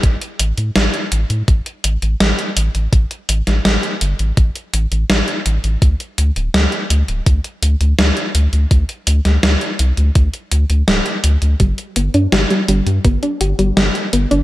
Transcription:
<<
  \new Staff \with { instrumentName = "Synth arpeggio sound" } { \time 4/4 \key g \mixolydian \tempo 4 = 83 r1 | r1 | r1 | r1 |
g16 r16 b16 d'16 g'16 g16 g16 r16 b16 d'16 g'16 g16 g16 r16 b16 d'16 | }
  \new Staff \with { instrumentName = "Analog synth bass" } { \clef bass \time 4/4 \key g \mixolydian a,,16 r16 a,,16 a,16 a,,16 r16 a,,16 a,16 a,,16 r16 a,,16 a,,16 a,,16 r16 a,,16 a,,16 | a,,16 r16 a,,16 a,,16 a,,16 r16 g,,16 a,,16 a,,16 r16 a,,16 a,,16 a,,16 r16 a,,16 a,,16 | d,16 r16 d,16 d,,16 d,16 r16 d,16 d,,16 d,16 r16 d,16 d,16 d,16 r16 d,16 d,16 | d,16 r16 d,16 d,16 d,16 r16 c,16 d,16 d,16 r16 d,16 d,16 d,,16 r16 d,16 d,16 |
g,,16 r16 g,,16 g,16 g,,16 r16 g,,16 g,16 g,,16 r16 g,,16 g,,16 g,,16 r16 g,,16 g,,16 | }
  \new DrumStaff \with { instrumentName = "Drums" } \drummode { \time 4/4 <hh bd>16 hh16 hh16 hh16 <hh sn>16 hh16 hh16 hh16 <hh bd>16 hh16 hh16 hh16 <hh sn>16 hh16 hh16 hh16 | <hh bd>16 hh16 hh16 <hh sn>16 <hh sn>16 hh16 hh16 hh16 <hh bd>16 hh16 hh16 hh16 <hh sn>16 hh16 hh16 hh16 | <hh bd>16 hh16 hh16 hh16 <hh sn>16 hh16 hh16 hh16 <hh bd>16 hh16 hh16 hh16 <hh sn>16 hh16 hh16 hh16 | <hh bd>16 hh16 hh16 <hh sn>16 <hh sn>16 hh16 hh16 hh16 <hh bd>16 hh16 hh16 hh16 <hh sn>16 hh16 hh16 hh16 |
<hh bd>16 hh16 hh16 hh16 <hh sn>16 hh16 hh16 hh16 <hh bd>16 hh16 hh16 hh16 <hh sn>16 hh16 hh16 hh16 | }
>>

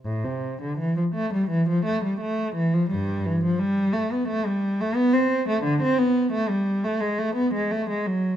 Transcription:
\new Staff \with { instrumentName = "Cello" } { \clef bass \time 4/4 \key a \minor \tempo 4 = 86 a,16 c8 d16 e16 f16 a16 g16 e16 f16 a16 g16 a8 e16 f16 | <g, g>8 e16 f16 g8 a16 b16 a16 g8 a16 b16 c'8 a16 | d16 c'16 b8 a16 g8 a16 gis16 a16 b16 gis16 a16 gis16 fis8 | }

